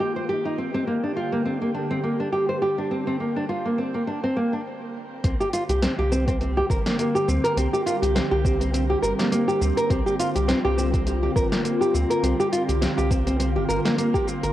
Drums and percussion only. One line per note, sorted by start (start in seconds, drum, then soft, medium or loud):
5.24 kick loud
5.24 closed hi-hat medium
5.24 shaker soft
5.41 shaker soft
5.53 closed hi-hat medium
5.53 shaker medium
5.70 closed hi-hat soft
5.70 shaker soft
5.83 snare medium
5.83 closed hi-hat medium
5.83 shaker soft
6.12 shaker medium
6.28 kick loud
6.28 closed hi-hat soft
6.28 shaker soft
6.41 closed hi-hat medium
6.41 shaker soft
6.70 kick loud
6.70 shaker medium
6.86 snare medium
6.86 closed hi-hat soft
6.86 shaker soft
6.99 closed hi-hat medium
6.99 shaker soft
7.16 shaker soft
7.29 shaker medium
7.45 closed hi-hat soft
7.45 shaker soft
7.57 closed hi-hat medium
7.57 shaker soft
7.74 shaker soft
7.87 closed hi-hat medium
7.87 shaker medium
8.03 closed hi-hat soft
8.03 shaker soft
8.16 snare medium
8.16 closed hi-hat medium
8.16 shaker soft
8.45 kick loud
8.45 shaker medium
8.61 closed hi-hat soft
8.61 shaker soft
8.74 closed hi-hat medium
8.74 shaker soft
9.04 shaker medium
9.19 snare medium
9.19 closed hi-hat soft
9.19 shaker soft
9.32 closed hi-hat medium
9.32 shaker soft
9.49 shaker soft
9.62 shaker medium
9.77 closed hi-hat soft
9.77 shaker soft
9.90 kick loud
9.90 closed hi-hat medium
9.90 shaker soft
10.07 shaker soft
10.20 closed hi-hat medium
10.20 shaker medium
10.36 closed hi-hat soft
10.36 shaker soft
10.49 snare medium
10.49 closed hi-hat medium
10.49 shaker soft
10.79 shaker medium
10.94 kick loud
10.94 closed hi-hat soft
10.94 shaker soft
11.07 closed hi-hat medium
11.07 shaker soft
11.36 kick loud
11.36 shaker medium
11.52 snare medium
11.52 closed hi-hat soft
11.52 shaker soft
11.65 closed hi-hat medium
11.65 shaker soft
11.82 shaker soft
11.95 shaker medium
12.11 closed hi-hat soft
12.11 shaker soft
12.24 closed hi-hat medium
12.24 shaker soft
12.40 shaker soft
12.53 closed hi-hat medium
12.53 shaker medium
12.69 closed hi-hat soft
12.69 shaker soft
12.82 snare medium
12.82 closed hi-hat medium
12.82 shaker soft
12.99 shaker soft
13.11 kick loud
13.11 closed hi-hat soft
13.11 shaker medium
13.27 closed hi-hat soft
13.27 shaker soft
13.40 closed hi-hat medium
13.40 shaker soft
13.70 shaker medium
13.85 snare medium
13.85 closed hi-hat soft
13.85 shaker soft
13.98 closed hi-hat medium
13.98 shaker soft
14.14 kick medium
14.14 shaker soft
14.28 shaker medium
14.43 closed hi-hat soft
14.43 shaker soft